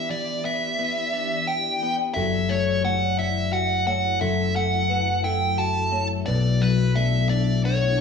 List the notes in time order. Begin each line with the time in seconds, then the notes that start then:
Already playing: E3 B3 D4 E4 G4 D5 E5
0.10 E3 D5
0.44 B3 E5
0.79 B3
1.13 D4
1.47 G4 G5
1.83 B3
2.14 F#1 F#3 E4 A4 E5
2.49 A3 C#5
2.84 A3 C#5 F#5
3.19 E4 D5 E5
3.52 F#4 F#5
3.87 A3 C#5 F#5
4.21 F#1 F#3 A4 E5
4.55 A3 F#5
4.89 A3 B4
5.24 E4 A4 G5
5.58 F#4 A5
5.92 A3 C#5
6.24 B2 B3 D4 B4 D5
6.28 B1
6.61 F#3 B4
6.95 A3 D5 E5
7.29 D4 D5 E5
7.64 F#4 C#5